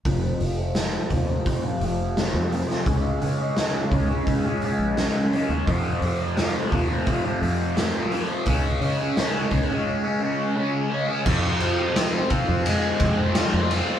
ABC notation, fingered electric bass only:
X:1
M:4/4
L:1/16
Q:1/4=86
K:Fm
V:1 name="Fingered electric bass" clef=bass
F,,,2 F,,,4 E,,2 z2 F,,,3 F,,2 z | D,,2 D,2 z2 D,,2 z3 B,,,2 z2 E,, | F,,2 F,,4 E,,2 z2 F,,3 A,,2 z | D,,2 D,2 z2 D,, z8 z |
F,,4 F,2 z F,,3 F,,3 F,,2 z |]